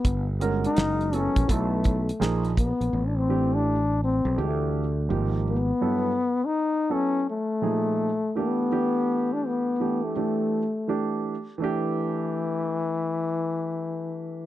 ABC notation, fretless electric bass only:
X:1
M:4/4
L:1/16
Q:"Swing 16ths" 1/4=83
K:G
V:1 name="Fretless electric bass" clef=bass
G,,,4 F,,,3 ^A,,, B,,,4 _B,,,3 B,,, | A,,,6- A,,, B,,, D,,4 ^G,,,4 | z16 | z16 |
z16 |]